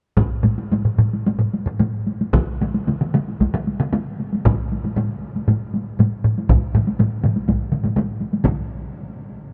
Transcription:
0.17 taiko loud
0.17 taiko low-mid medium
0.17 taiko high medium
0.44 taiko low-mid medium
0.44 taiko high medium
0.58 taiko high medium
0.72 taiko low-mid medium
0.72 taiko high medium
0.85 taiko low-mid medium
0.98 taiko low-mid medium
0.98 taiko high soft
1.13 taiko high soft
1.26 taiko high medium
1.39 taiko low-mid medium
1.53 taiko high soft
1.66 taiko low-mid medium
1.79 taiko low-mid loud
1.79 taiko high medium
2.07 taiko high soft
2.21 taiko high medium
2.33 taiko loud
2.33 taiko mid medium
2.33 taiko high medium
2.61 taiko mid medium
2.61 taiko high soft
2.74 taiko high medium
2.87 taiko mid medium
2.87 taiko high medium
3.01 taiko mid medium
3.14 taiko mid medium
3.14 taiko high medium
3.28 taiko high soft
3.40 taiko medium
3.40 taiko high medium
3.54 taiko mid medium
3.67 taiko high medium
3.80 taiko mid loud
3.93 taiko mid medium
3.93 taiko high medium
4.20 taiko high soft
4.33 taiko high medium
4.45 taiko loud
4.45 taiko low-mid medium
4.45 taiko high medium
4.72 taiko high soft
4.84 taiko low-mid medium
4.84 taiko high medium
4.96 taiko low-mid medium
4.96 taiko high medium
5.36 taiko high soft
5.48 taiko low-mid medium
5.48 taiko high medium
5.74 taiko high medium
5.99 taiko low-mid medium
5.99 taiko high medium
6.24 taiko low-mid medium
6.38 taiko high medium
6.49 taiko medium
6.49 taiko low-mid medium
6.49 taiko mid medium
6.49 taiko high medium
6.75 taiko low-mid medium
6.75 taiko mid medium
6.75 taiko high soft
6.87 taiko high medium
6.99 taiko low-mid medium
6.99 taiko mid medium
6.99 taiko high medium
7.24 taiko low-mid medium
7.24 taiko mid medium
7.24 taiko high soft
7.36 taiko high medium
7.48 taiko medium
7.48 taiko low-mid medium
7.48 taiko mid medium
7.48 taiko high medium
7.72 taiko low-mid medium
7.72 taiko mid medium
7.72 taiko high soft
7.84 taiko low-mid medium
7.84 taiko mid medium
7.84 taiko high soft
7.96 taiko low-mid medium
7.96 taiko mid medium
7.96 taiko high medium
8.21 taiko high soft
8.33 taiko high medium
8.44 taiko medium
8.44 taiko low-mid loud
8.44 taiko mid medium
8.44 taiko high medium

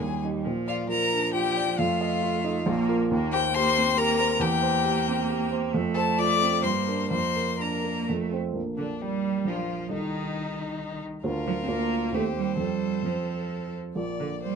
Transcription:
0.00 0.43 D#2 medium
0.00 0.46 G3 medium
0.00 0.21 G#4 medium
0.00 0.21 G#5 medium
0.24 0.44 D#4 soft
0.24 0.44 G4 soft
0.45 1.75 A#2 medium
0.45 0.89 F3 medium
0.68 0.88 F4 medium
0.68 1.04 D5 medium
0.68 0.76 F5 medium
0.89 1.81 F3 medium
0.89 1.25 F4 soft
0.89 1.34 A#4 medium
0.89 1.33 A#5 medium
1.12 1.48 D4 soft
1.33 1.70 F4 medium
1.33 1.78 G4 medium
1.33 1.80 G5 medium
1.56 1.79 D5 medium
1.78 2.64 F2 medium
1.78 2.66 A3 medium
1.78 2.88 F4 medium
1.78 2.89 F5 medium
2.01 2.36 D#5 medium
2.23 2.58 F4 medium
2.44 2.67 D#4 medium
2.66 3.09 A#1 medium
2.66 3.10 A#3 medium
2.88 3.08 F4 medium
2.88 3.09 A#4 medium
3.11 4.37 D#2 medium
3.11 3.54 A#3 medium
3.33 3.41 G4 medium
3.33 3.68 C5 medium
3.33 3.56 G5 loud
3.54 3.97 A#3 medium
3.54 3.90 G4 medium
3.54 3.99 C5 medium
3.54 3.99 C6 loud
3.77 4.11 C4 medium
3.97 4.39 A#3 medium
3.97 4.32 G4 medium
3.97 4.42 A#4 medium
3.97 4.43 A#5 loud
4.19 4.41 C5 medium
4.39 5.68 E2 medium
4.39 5.74 A#3 medium
4.39 5.51 G4 medium
4.39 5.51 G5 loud
4.61 4.98 C5 medium
4.85 5.20 G4 medium
5.08 5.43 C4 medium
5.29 5.64 G4 medium
5.51 5.73 C5 medium
5.73 6.61 F2 medium
5.73 6.64 A3 medium
5.95 6.03 A4 medium
5.95 6.31 C5 medium
5.95 6.20 A5 medium
6.18 6.54 F4 medium
6.18 6.64 D5 medium
6.18 6.65 D6 loud
6.42 6.64 C4 soft
6.62 7.09 G2 medium
6.62 7.09 A#3 medium
6.62 7.08 C5 medium
6.62 7.10 C6 medium
6.87 7.09 D4 soft
6.87 7.09 A#4 soft
7.09 8.06 F2 medium
7.09 7.58 A#3 medium
7.09 7.60 C5 medium
7.09 7.62 C6 medium
7.36 7.75 A#4 soft
7.58 8.10 A#3 medium
7.58 7.99 D4 soft
7.58 8.08 A#4 medium
7.58 8.09 A#5 medium
7.85 8.09 A#3 soft
8.08 8.55 F2 medium
8.08 8.35 A3 medium
8.31 8.53 C4 soft
8.31 8.53 C5 soft
8.53 9.43 A#1 soft
8.53 9.44 A#3 soft
8.53 9.44 D4 soft
8.53 9.44 A#4 soft
8.78 8.86 D3 soft
8.78 9.03 D4 soft
8.78 9.01 D4 soft
9.02 9.49 G3 medium
9.02 9.50 G3 medium
9.02 9.47 G3 medium
9.45 9.89 A#1 soft
9.45 9.92 F3 soft
9.45 9.90 A#3 soft
9.45 9.90 D4 soft
9.45 9.91 F4 soft
9.45 9.92 F4 soft
9.45 9.90 A#4 soft
9.89 11.20 C2 soft
9.89 11.02 D#3 medium
9.89 11.20 D#4 soft
9.89 11.01 D#4 medium
9.89 11.21 A4 soft
9.93 11.02 D#4 soft
11.24 11.66 D2 soft
11.24 11.67 D4 soft
11.24 11.67 F4 soft
11.24 12.16 F4 medium
11.24 11.68 A#4 soft
11.24 12.16 A#4 medium
11.47 11.53 F3 medium
11.63 11.70 C4 soft
11.68 12.12 D2 soft
11.68 12.13 A#3 medium
11.68 12.12 D4 soft
11.68 12.12 F4 soft
11.68 12.12 A#4 soft
12.12 12.57 D#2 soft
12.12 12.22 A3 medium
12.12 12.56 C4 soft
12.12 12.57 G4 soft
12.12 12.58 G4 soft
12.12 12.57 C5 soft
12.12 13.78 C5 medium
12.36 12.58 G3 medium
12.57 13.02 F2 soft
12.57 13.07 G3 medium
12.57 13.02 C4 soft
12.57 13.03 A4 soft
12.57 13.75 A4 soft
12.57 13.03 C5 soft
13.03 13.94 F2 soft
13.03 13.75 F3 soft
13.03 13.94 C4 soft
13.03 13.95 A4 soft
13.03 13.95 C5 soft
13.95 14.55 A#1 soft
13.95 14.55 A#3 soft
13.95 14.55 F4 soft
13.95 14.55 D5 soft
13.95 14.40 D5 soft
13.95 14.55 D5 soft
14.20 14.28 D3 medium
14.43 14.55 G3 medium
14.43 14.55 C5 soft

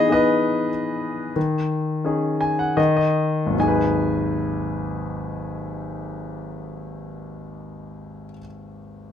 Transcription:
0.00 1.32 E3 medium
0.00 0.09 B3 medium
0.00 0.09 D#4 medium
0.00 0.09 G#4 medium
0.00 0.11 D#5 medium
0.09 0.70 B3 soft
0.09 0.69 D#4 soft
0.09 0.70 G#4 soft
0.09 2.75 D#5 medium
0.13 1.35 B4 medium
1.36 2.74 D#3 soft
2.04 2.76 C#4 soft
2.04 2.76 D#4 soft
2.04 2.76 G#4 soft
2.41 2.58 G#5 medium
2.59 2.77 F#5 medium
2.77 3.54 D#3 medium
2.77 2.95 D#5 medium
2.97 3.53 D#5 medium
3.46 8.24 G#1 soft
3.50 8.29 D#2 soft
3.55 8.33 F#3 soft
3.59 8.37 D#4 soft
3.59 8.38 G#5 medium
3.63 8.41 G#4 soft
3.68 8.46 B4 soft

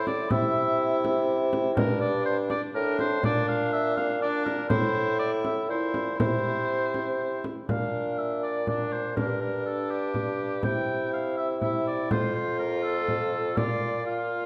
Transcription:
0.00 0.31 A2 medium
0.00 0.30 E4 medium
0.07 0.32 D5 loud
0.07 frame drum medium
0.31 1.75 C3 medium
0.31 1.75 E4 medium
0.31 1.28 E5 loud
0.31 frame drum medium
1.05 frame drum medium
1.53 frame drum medium
1.77 2.58 G2 medium
1.77 2.72 D4 medium
1.77 2.00 A#4 loud
1.77 frame drum medium
2.00 2.25 D5 loud
2.26 2.37 C5 loud
2.50 2.61 D5 loud
2.50 frame drum medium
2.75 3.25 A2 medium
2.75 3.23 D4 medium
2.75 2.99 A#4 loud
2.99 3.24 C5 loud
2.99 frame drum medium
3.23 4.70 A#2 medium
3.23 4.20 D4 medium
3.23 3.48 D5 loud
3.23 frame drum medium
3.49 3.72 F5 loud
3.73 3.96 E5 loud
3.97 4.21 F5 loud
3.97 frame drum soft
4.22 4.70 D4 medium
4.22 4.44 D5 loud
4.45 4.69 A#4 medium
4.45 frame drum medium
4.69 5.71 A2 medium
4.69 5.68 E4 medium
4.69 5.18 C5 loud
4.69 frame drum medium
5.19 5.31 D5 medium
5.45 5.69 E5 medium
5.45 frame drum soft
5.70 6.19 A#2 medium
5.70 6.19 E4 medium
5.70 6.19 C5 medium
5.94 frame drum medium
6.19 7.42 C3 medium
6.19 7.46 E4 medium
6.19 7.42 C5 loud
6.19 frame drum medium
6.94 frame drum soft
7.44 frame drum medium
7.69 9.18 A#2 medium
7.69 8.63 D4 medium
7.69 8.20 F5 medium
7.69 frame drum medium
8.18 8.42 E5 medium
8.43 8.67 D5 medium
8.67 9.16 D4 medium
8.67 8.94 D5 medium
8.67 frame drum medium
8.92 9.16 C5 medium
9.16 10.65 G2 medium
9.16 10.61 D4 medium
9.16 9.41 A#4 medium
9.16 frame drum medium
9.42 9.65 A#4 medium
9.66 9.92 A4 medium
9.91 10.64 G4 medium
10.14 frame drum medium
10.63 12.10 C3 medium
10.63 11.60 E4 medium
10.63 11.12 G5 loud
10.63 frame drum medium
11.13 11.37 F5 medium
11.37 11.48 E5 medium
11.62 12.13 E4 medium
11.62 11.86 E5 medium
11.62 frame drum medium
11.87 12.11 D5 medium
12.11 13.54 F2 medium
12.11 13.57 F4 medium
12.11 12.34 C5 medium
12.11 frame drum medium
12.35 12.59 C5 medium
12.59 12.82 A#4 medium
12.83 13.59 A4 loud
13.08 frame drum medium
13.57 14.46 A#2 medium
13.57 14.05 F4 medium
13.57 14.06 D5 loud
13.57 frame drum medium
14.06 14.46 F4 medium
14.06 14.46 F5 medium

